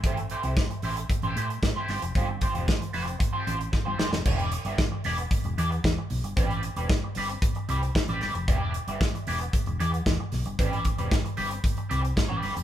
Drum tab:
CC |----------------|----------------|x---------------|----------------|
HH |xxxx-xoxxxxx--ox|x-xx-xoxx-xx----|-xxx--oxxxxx--ox|xxxx--oxxxxx-xox|
SD |----o-------o-o-|----o-------o-oo|----o-------o---|----o-------o-o-|
BD |o---o---o---o---|o-o-o---o---o---|o---o---o---o---|o---o---o---o---|

CC |----------------|----------------|
HH |x-xx-xoxxxxx--ox|xxxx-xoxxxxx--ox|
SD |----o-------o-o-|----o-------o---|
BD |o---o---o---o---|o-o-o---o---o---|